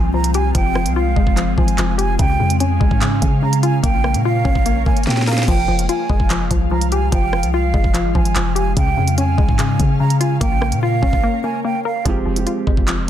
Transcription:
Already playing: C2 F3 G#3 C4 F4
0.14 F3 A#5
0.24 closed hi-hat
0.34 G4 G#5, closed hi-hat
0.55 F1 F3 G5, kick, closed hi-hat
0.75 F3, cross-stick
0.86 C2, closed hi-hat
0.96 F4 F5
1.16 F1 G#3, kick
1.27 F1, kick
1.36 F3, clap, closed hi-hat
1.47 G#1
1.58 G#1 F3 G#5, kick
1.68 closed hi-hat
1.78 F1 F3, clap, closed hi-hat
1.98 G4 G#5, closed hi-hat
2.19 C#2 C#3 C#4 F5 G5, kick, closed hi-hat
2.40 F2 C#3
2.50 closed hi-hat
2.60 C#4 G#5, closed hi-hat
2.80 C#2 G#3, kick
2.91 G#2, kick
3.01 C#3, clap, closed hi-hat
3.22 C#3, kick, closed hi-hat
3.42 C#3 A#5
3.53 closed hi-hat
3.63 F4 G#5, closed hi-hat
3.83 A#1 A#3 A#4 C#5 G5, kick, closed hi-hat
4.04 A#3, cross-stick
4.14 A#2, closed hi-hat
4.25 F4 F5
4.45 A#1 C#4, kick
4.55 A#1, kick
4.66 A#3, closed hi-hat
4.86 G#1 A#3 G#5, kick
4.97 closed hi-hat
5.03 A#2 A#3 G5, snare, closed hi-hat
5.10 snare, closed hi-hat
5.17 snare
5.22 snare
5.27 A#4 F5, snare, open hi-hat
5.33 snare
5.38 snare
5.43 snare
5.48 F1 F3 G#3 F4 F5 G5, kick, crash
5.68 F1 F3
5.79 closed hi-hat
5.89 F4 G#5, closed hi-hat
6.10 F1 G#3, kick
6.20 F1, kick
6.30 F3, clap, closed hi-hat
6.51 C2 F3, kick, closed hi-hat
6.71 F3 A#5
6.81 closed hi-hat
6.92 G4 G#5, closed hi-hat
7.12 F1 F3 G5, kick, closed hi-hat
7.33 F3, cross-stick
7.43 C2, closed hi-hat
7.53 F4 F5
7.74 F1 G#3, kick
7.84 F1, kick
7.94 F3, clap, closed hi-hat
8.05 G#1
8.15 G#1 F3 G#5, kick
8.25 closed hi-hat
8.36 F1 F3, clap, closed hi-hat
8.55 G4 G#5, closed hi-hat
8.77 C#2 C#3 C#4 F5 G5, kick, closed hi-hat
8.97 F2 C#3
9.08 closed hi-hat
9.18 C#4 G#5, closed hi-hat
9.38 C#2 G#3, kick
9.49 G#2, kick
9.59 C#3, clap, closed hi-hat
9.79 C#3, kick, closed hi-hat
10.00 C#3 A#5
10.10 closed hi-hat
10.21 F4 G#5, closed hi-hat
10.41 A#1 A#3 A#4 C#5 G5, kick, closed hi-hat
10.61 A#3, cross-stick
10.72 A#2, closed hi-hat
10.82 F4 F5
11.02 A#1 C#4, kick
11.13 A#1, kick
11.23 A#3
11.44 A#3 G#5
11.64 A#3 G5
11.85 A#4 F5
12.05 F1 F3 G#3 C4 F4, kick, closed hi-hat
12.09 G4
12.26 F1 F3
12.34 G#3 C4 F4, closed hi-hat
12.38 G4
12.47 F4, closed hi-hat
12.67 F1 G#3, kick
12.77 F1, kick
12.88 F3, clap, closed hi-hat

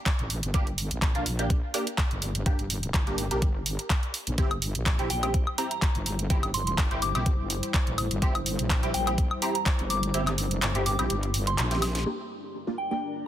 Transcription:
0.06 kick, clap, closed hi-hat
0.19 A1, closed hi-hat
0.30 open hi-hat
0.43 G1, closed hi-hat
0.54 G1 A#3 D4 G4, kick, closed hi-hat
0.67 closed hi-hat
0.78 open hi-hat
0.91 A#1, closed hi-hat
1.02 kick, clap, closed hi-hat
1.15 A#3 D4 F4, closed hi-hat
1.26 A#1, open hi-hat
1.39 A#3 D4 G4, closed hi-hat
1.50 kick, closed hi-hat
1.74 A#3 D4 G4, open hi-hat
1.87 closed hi-hat
1.98 kick, clap, closed hi-hat
2.11 G1, closed hi-hat
2.22 open hi-hat
2.35 closed hi-hat
2.46 G1 A#3 D4 G4, kick, closed hi-hat
2.59 closed hi-hat
2.70 open hi-hat
2.83 closed hi-hat
2.94 G1, kick, clap, closed hi-hat
3.07 A#3 D4 G4, closed hi-hat
3.18 open hi-hat
3.31 A#1 A#3 D4 G4, closed hi-hat
3.42 G1, kick, closed hi-hat
3.66 open hi-hat
3.79 closed hi-hat
3.90 kick, clap, closed hi-hat
4.03 closed hi-hat
4.14 open hi-hat
4.27 A#1, closed hi-hat
4.38 G1 G3 C4 E4 G4 C5, kick, closed hi-hat
4.51 closed hi-hat, high woodblock
4.62 open hi-hat
4.75 A#1, closed hi-hat
4.86 kick, clap, closed hi-hat
4.99 C4 E4 G4, closed hi-hat
5.10 A#1 G5, open hi-hat
5.23 C4 E4 G4 G5, closed hi-hat, high woodblock
5.34 kick, closed hi-hat
5.47 high woodblock
5.58 C4 E4 G4 A#5, open hi-hat
5.71 A#5, closed hi-hat
5.82 kick, clap, closed hi-hat
5.95 G1, closed hi-hat
6.06 open hi-hat
6.19 closed hi-hat
6.30 G1 C4 E4 G4, kick, closed hi-hat
6.43 closed hi-hat, high woodblock
6.54 C6, open hi-hat
6.67 C6, closed hi-hat
6.78 G1, kick, clap, closed hi-hat
6.91 C4 E4 G4, closed hi-hat
7.02 D6, open hi-hat
7.15 A#1 C4 E4 G4 D6, closed hi-hat, high woodblock
7.26 G1, kick, closed hi-hat
7.39 G1
7.50 open hi-hat
7.63 closed hi-hat
7.74 kick, clap, closed hi-hat
7.87 A1, closed hi-hat
7.98 open hi-hat, high woodblock
8.11 G1, closed hi-hat
8.22 G1 C4 E4 G4, kick, closed hi-hat
8.35 closed hi-hat, high woodblock
8.46 open hi-hat
8.59 A#1, closed hi-hat
8.70 kick, clap, closed hi-hat
8.83 C4 E4 G4, closed hi-hat
8.94 A#1 G5, open hi-hat
9.07 C4 E4 G4 G5, closed hi-hat, high woodblock
9.18 kick, closed hi-hat
9.31 high woodblock
9.42 C4 E4 G4 A#5, open hi-hat
9.55 A#5, closed hi-hat
9.66 kick, clap, closed hi-hat
9.79 G1, closed hi-hat
9.90 D6, open hi-hat
10.03 closed hi-hat
10.14 G1 C4 E4 G4, closed hi-hat
10.27 clap, closed hi-hat, high woodblock
10.38 open hi-hat
10.51 closed hi-hat
10.62 G1, clap, closed hi-hat
10.75 C4 E4 G4, closed hi-hat
10.86 D6, open hi-hat
10.99 A#1 C4 E4 G4, closed hi-hat, high woodblock
11.10 G1, closed hi-hat
11.23 closed hi-hat
11.34 open hi-hat
11.47 C6, closed hi-hat
11.58 A#1, clap, closed hi-hat
11.71 C4 E4 G4, snare, closed hi-hat
11.82 snare, open hi-hat, high woodblock
11.95 snare, closed hi-hat
12.06 G3 A#3 D4 G4 A#4
12.53 A#4
12.67 A#3 D4 F4
12.78 G5
12.91 A#3 D4 G4 G5

